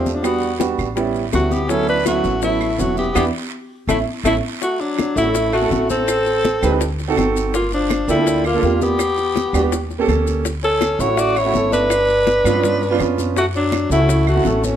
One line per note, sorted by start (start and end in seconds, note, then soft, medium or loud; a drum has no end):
0.00 0.73 E2 medium
0.00 0.13 F3 medium
0.00 0.13 A3 medium
0.00 0.13 C4 medium
0.00 0.16 C4 medium
0.00 0.14 D4 medium
0.00 0.14 G4 medium
0.06 high conga medium
0.06 short guiro medium
0.06 maracas soft
0.13 0.24 F3 medium
0.13 0.25 D4 medium
0.22 0.49 G3 medium
0.22 0.49 B3 medium
0.22 0.59 B3 medium
0.22 0.50 D4 medium
0.22 0.50 F#4 medium
0.22 high bongo medium
0.22 high conga soft
0.22 long guiro medium
0.22 claves medium
0.22 maracas medium
0.26 0.59 F#4 medium
0.42 high bongo soft
0.42 high conga soft
0.42 maracas soft
0.59 0.85 G3 medium
0.59 0.86 B3 medium
0.59 0.86 D4 medium
0.59 0.86 F#4 medium
0.59 high bongo medium
0.59 high conga medium
0.59 short guiro medium
0.59 maracas medium
0.78 1.30 A1 medium
0.78 high bongo soft
0.78 high conga soft
0.78 short guiro medium
0.78 claves medium
0.78 maracas soft
0.96 1.22 G3 medium
0.96 1.22 B3 medium
0.96 1.23 C#4 medium
0.96 1.23 E4 medium
0.96 high bongo medium
0.96 high conga soft
0.96 long guiro medium
0.96 maracas medium
1.15 high bongo soft
1.15 high conga soft
1.15 maracas soft
1.32 2.19 D2 medium
1.32 1.59 G3 medium
1.32 1.52 A3 medium
1.32 1.59 B3 medium
1.32 1.59 C#4 medium
1.32 1.59 E4 medium
1.32 1.54 F#4 loud
1.32 high bongo soft
1.32 low bongo medium
1.32 high conga medium
1.32 short guiro medium
1.32 claves medium
1.32 maracas medium
1.51 1.70 B3 medium
1.51 1.73 G4 medium
1.51 high conga medium
1.51 short guiro medium
1.51 maracas soft
1.69 1.95 F#3 medium
1.69 1.96 B3 medium
1.69 1.88 C#4 medium
1.69 1.96 C#4 medium
1.69 1.96 E4 medium
1.69 1.89 A4 loud
1.69 high bongo medium
1.69 high conga soft
1.69 long guiro medium
1.69 maracas medium
1.87 2.05 D4 medium
1.87 2.06 B4 loud
1.87 high bongo soft
1.87 high conga soft
1.87 maracas soft
2.06 2.32 F#3 medium
2.06 2.40 A3 medium
2.06 2.32 B3 medium
2.06 2.32 C#4 medium
2.06 2.33 E4 medium
2.06 2.41 F#4 loud
2.06 high bongo medium
2.06 high conga medium
2.06 short guiro medium
2.06 claves medium
2.06 maracas medium
2.24 2.75 A1 medium
2.24 high bongo soft
2.24 high conga soft
2.24 short guiro medium
2.24 maracas soft
2.42 2.68 F#3 medium
2.42 2.80 A3 medium
2.42 2.68 B3 medium
2.42 2.69 C#4 medium
2.42 2.69 E4 medium
2.42 2.82 E4 medium
2.42 high bongo medium
2.42 high conga soft
2.42 long guiro medium
2.42 maracas medium
2.61 high bongo soft
2.61 high conga soft
2.61 claves medium
2.61 maracas soft
2.78 3.13 E1 medium
2.78 3.04 F#3 medium
2.78 2.97 A3 medium
2.78 3.04 B3 medium
2.78 3.05 C#4 medium
2.78 3.05 E4 medium
2.78 2.98 F#4 loud
2.78 high bongo soft
2.78 low bongo medium
2.78 high conga medium
2.78 short guiro medium
2.78 maracas medium
2.97 3.15 B3 medium
2.97 3.15 G4 medium
2.97 high conga medium
2.97 short guiro medium
2.97 maracas soft
3.15 3.29 E2 loud
3.15 3.24 B3 medium
3.15 3.27 B3 medium
3.15 3.27 D4 medium
3.15 3.27 E4 medium
3.15 3.25 G4 medium
3.15 low bongo medium
3.15 high conga medium
3.15 long guiro loud
3.15 claves medium
3.15 maracas loud
3.87 4.02 A1 loud
3.87 3.97 A3 medium
3.87 4.01 A3 medium
3.87 4.01 C#4 medium
3.87 4.00 E4 medium
3.87 3.99 E4 medium
3.87 low bongo loud
3.87 high conga medium
3.87 long guiro medium
3.87 claves medium
3.87 maracas medium
4.24 4.38 A1 medium
4.24 4.34 A3 medium
4.24 4.38 A3 medium
4.24 4.37 C#4 medium
4.24 4.37 E4 medium
4.24 4.35 E4 medium
4.24 low bongo medium
4.24 high conga medium
4.24 claves medium
4.24 maracas medium
4.62 4.81 A3 medium
4.62 4.82 F#4 medium
4.62 high bongo medium
4.62 high conga soft
4.62 long guiro medium
4.62 maracas medium
4.80 5.16 F#3 medium
4.80 5.17 D4 medium
4.80 high bongo soft
4.80 high conga soft
4.80 maracas soft
4.98 high bongo medium
4.98 high conga medium
4.98 short guiro medium
4.98 claves medium
4.98 maracas soft
5.16 5.67 A1 medium
5.16 5.23 A3 medium
5.16 5.50 A3 medium
5.16 5.23 C#4 medium
5.16 5.23 E4 medium
5.16 5.51 E4 loud
5.16 5.24 F#4 medium
5.16 short guiro medium
5.16 maracas medium
5.25 5.51 A3 medium
5.25 5.51 C#4 medium
5.25 5.52 E4 medium
5.25 5.52 A4 medium
5.35 high bongo medium
5.35 high conga soft
5.35 long guiro medium
5.35 maracas medium
5.53 5.87 A3 medium
5.53 5.88 F#4 medium
5.53 high bongo soft
5.53 high conga soft
5.53 claves medium
5.53 maracas soft
5.61 5.68 A3 medium
5.61 5.68 C#4 medium
5.61 5.69 E4 medium
5.61 5.69 A4 loud
5.71 6.56 A1 medium
5.71 6.07 A3 medium
5.71 6.08 C#4 medium
5.71 6.08 E4 medium
5.71 6.08 A4 medium
5.71 high bongo soft
5.71 low bongo medium
5.71 high conga medium
5.71 short guiro medium
5.71 maracas soft
5.89 6.95 C4 medium
5.89 6.96 A4 loud
5.89 high bongo soft
5.89 high conga medium
5.89 short guiro medium
5.89 maracas medium
6.08 high bongo medium
6.08 high conga soft
6.08 long guiro medium
6.08 claves medium
6.08 maracas medium
6.26 high bongo soft
6.26 high conga soft
6.26 maracas soft
6.45 high bongo medium
6.45 high conga medium
6.45 short guiro medium
6.45 maracas soft
6.62 7.13 D2 loud
6.62 6.69 C4 medium
6.62 6.69 D#4 medium
6.62 6.70 G4 medium
6.62 6.70 B4 loud
6.62 high conga soft
6.62 low conga medium
6.62 short guiro medium
6.62 claves medium
6.62 maracas medium
6.71 6.80 C4 medium
6.71 6.81 D#4 medium
6.71 6.81 G4 medium
6.71 6.81 B4 medium
6.81 high bongo medium
6.81 high conga soft
6.81 long guiro medium
6.81 maracas medium
6.99 high bongo soft
6.99 high conga soft
6.99 maracas soft
7.08 7.14 C4 loud
7.08 7.15 D#4 medium
7.08 7.15 F#4 medium
7.08 7.15 A4 loud
7.17 8.02 G1 medium
7.17 7.54 C4 medium
7.17 7.54 D#4 medium
7.17 7.54 F#4 medium
7.17 7.54 A4 medium
7.17 high bongo soft
7.17 low bongo medium
7.17 high conga medium
7.17 short guiro medium
7.17 claves medium
7.17 maracas soft
7.35 high bongo soft
7.35 short guiro medium
7.35 maracas medium
7.54 7.71 A#3 medium
7.54 7.71 F4 loud
7.54 high bongo medium
7.54 high conga soft
7.54 long guiro medium
7.54 maracas medium
7.72 8.07 F3 medium
7.72 8.07 D4 medium
7.72 high bongo soft
7.72 high conga soft
7.72 maracas soft
7.90 high bongo medium
7.90 high conga loud
7.90 short guiro medium
7.90 claves medium
7.90 maracas soft
8.08 8.59 D2 medium
8.08 8.42 G3 medium
8.08 8.14 A#3 medium
8.08 8.15 D4 medium
8.08 8.43 E4 loud
8.08 8.15 F4 medium
8.08 8.15 A4 medium
8.08 short guiro medium
8.08 maracas medium
8.18 8.43 A#3 medium
8.18 8.43 D4 medium
8.18 8.44 F4 medium
8.18 8.44 A4 medium
8.27 high bongo medium
8.27 high conga soft
8.27 long guiro medium
8.27 maracas medium
8.45 8.79 A#3 medium
8.45 8.79 F4 medium
8.45 high bongo soft
8.45 high conga soft
8.45 claves medium
8.45 maracas soft
8.54 8.60 A#3 medium
8.54 8.61 D4 medium
8.54 8.61 F4 medium
8.54 8.61 A4 medium
8.63 9.48 E2 medium
8.63 9.00 A#3 medium
8.63 9.00 D4 medium
8.63 9.00 F4 medium
8.63 9.00 G4 medium
8.63 high bongo soft
8.63 low bongo medium
8.63 high conga medium
8.63 short guiro medium
8.63 maracas soft
8.81 9.69 B3 medium
8.81 9.87 G4 loud
8.81 high bongo soft
8.81 high conga loud
8.81 short guiro medium
8.81 maracas medium
8.99 high bongo medium
8.99 high conga soft
8.99 long guiro medium
8.99 claves medium
8.99 maracas medium
9.17 high bongo soft
9.17 high conga soft
9.17 maracas soft
9.35 high bongo medium
9.35 high conga medium
9.35 short guiro medium
9.35 maracas soft
9.53 10.04 D#2 medium
9.53 9.60 B3 medium
9.53 9.60 D4 medium
9.53 9.61 F#4 medium
9.53 9.61 G4 loud
9.53 high conga soft
9.53 low conga medium
9.53 short guiro medium
9.53 claves medium
9.53 maracas medium
9.62 9.72 B3 medium
9.62 9.72 D4 medium
9.62 9.72 F#4 medium
9.62 9.73 G4 medium
9.72 high bongo medium
9.72 high conga soft
9.72 long guiro medium
9.72 maracas medium
9.90 high bongo soft
9.90 high conga soft
9.90 maracas soft
9.99 10.05 A#3 loud
9.99 10.06 C#4 medium
9.99 10.06 G4 medium
9.99 10.07 A4 loud
10.08 10.93 D2 medium
10.08 10.45 A#3 medium
10.08 10.45 C#4 medium
10.08 10.45 G4 medium
10.08 10.45 A4 loud
10.08 high bongo soft
10.08 low bongo medium
10.08 high conga medium
10.08 short guiro medium
10.08 claves medium
10.08 maracas soft
10.27 high bongo soft
10.27 short guiro medium
10.27 maracas medium
10.45 high bongo medium
10.45 high conga soft
10.45 long guiro medium
10.45 maracas medium
10.63 11.01 C#4 medium
10.63 11.02 A4 loud
10.63 high bongo soft
10.63 high conga soft
10.63 maracas soft
10.81 high bongo medium
10.81 high conga medium
10.81 short guiro medium
10.81 claves medium
10.81 maracas soft
10.99 11.50 A1 medium
10.99 11.06 A3 medium
10.99 11.06 C#4 medium
10.99 11.18 E4 medium
10.99 11.07 E4 medium
10.99 11.07 F#4 medium
10.99 11.21 C#5 loud
10.99 short guiro medium
10.99 maracas medium
11.08 11.34 A3 medium
11.08 11.34 C#4 medium
11.08 11.34 E4 medium
11.08 11.35 F#4 medium
11.17 11.38 F#4 medium
11.17 11.39 D5 loud
11.17 high bongo medium
11.17 high conga soft
11.17 long guiro medium
11.17 maracas medium
11.36 11.71 E4 medium
11.36 11.73 C#5 loud
11.36 high bongo soft
11.36 high conga soft
11.36 claves medium
11.36 maracas soft
11.45 11.51 A3 medium
11.45 11.51 C#4 medium
11.45 11.52 E4 medium
11.45 11.52 F#4 medium
11.53 12.39 G1 medium
11.53 11.91 A3 medium
11.53 11.91 C#4 medium
11.53 11.91 E4 medium
11.53 11.92 A4 medium
11.53 high bongo soft
11.53 low bongo medium
11.53 high conga medium
11.53 short guiro medium
11.53 maracas soft
11.72 13.14 D4 medium
11.72 13.14 B4 loud
11.72 high bongo soft
11.72 high conga medium
11.72 short guiro medium
11.72 maracas medium
11.90 high bongo medium
11.90 high conga soft
11.90 long guiro medium
11.90 claves medium
11.90 maracas medium
12.09 high bongo soft
12.09 high conga soft
12.09 maracas soft
12.27 high bongo medium
12.27 high conga medium
12.27 short guiro medium
12.27 maracas soft
12.44 12.95 G2 loud
12.44 12.51 B3 loud
12.44 12.52 C#4 medium
12.44 12.52 D4 medium
12.44 12.52 F4 loud
12.44 high conga soft
12.44 low conga medium
12.44 short guiro medium
12.44 claves medium
12.44 maracas medium
12.53 12.79 B3 medium
12.53 12.80 C#4 medium
12.53 12.80 D4 medium
12.53 12.80 F4 loud
12.63 high bongo medium
12.63 high conga soft
12.63 low conga medium
12.63 long guiro medium
12.63 maracas medium
12.82 high bongo soft
12.82 high conga soft
12.82 maracas soft
12.90 12.97 B3 loud
12.90 12.97 C#4 medium
12.90 12.97 D4 medium
12.90 12.98 F4 loud
12.99 13.84 F#2 medium
12.99 13.36 B3 medium
12.99 13.36 C#4 medium
12.99 13.36 D4 medium
12.99 13.37 F4 medium
12.99 high bongo soft
12.99 low bongo medium
12.99 high conga medium
12.99 short guiro medium
12.99 claves medium
12.99 maracas soft
13.18 high bongo soft
13.18 high conga medium
13.18 short guiro medium
13.18 maracas medium
13.36 13.45 A3 medium
13.36 13.46 F#4 loud
13.36 high bongo medium
13.36 high conga soft
13.36 long guiro medium
13.36 maracas medium
13.55 13.89 F#3 medium
13.55 13.89 D4 loud
13.55 high bongo soft
13.55 high conga soft
13.55 maracas soft
13.72 high bongo medium
13.72 high conga medium
13.72 short guiro medium
13.72 claves medium
13.72 maracas soft
13.90 14.41 C#2 loud
13.90 13.97 A3 medium
13.90 14.25 A3 medium
13.90 13.97 C#4 medium
13.90 13.98 E4 medium
13.90 14.25 E4 loud
13.90 13.98 F#4 medium
13.90 short guiro medium
13.90 maracas medium
13.99 14.25 A3 medium
13.99 14.26 C#4 medium
13.99 14.26 E4 medium
13.99 14.26 F#4 medium
14.09 high bongo medium
14.09 high conga soft
14.09 long guiro medium
14.09 maracas medium
14.27 14.66 A3 medium
14.27 14.66 F#4 medium
14.27 high bongo soft
14.27 high conga soft
14.27 claves medium
14.27 maracas soft
14.35 14.42 A3 medium
14.35 14.42 C#4 medium
14.35 14.43 E4 medium
14.35 14.43 F#4 medium
14.45 14.76 A1 medium
14.45 14.76 A3 medium
14.45 14.76 C#4 medium
14.45 14.76 E4 medium
14.45 14.76 A4 medium
14.45 high bongo soft
14.45 low bongo medium
14.45 high conga medium
14.45 short guiro medium
14.45 maracas soft
14.63 14.76 E3 medium
14.63 14.76 C#4 medium
14.63 high bongo soft
14.63 high conga medium
14.63 short guiro medium
14.63 maracas medium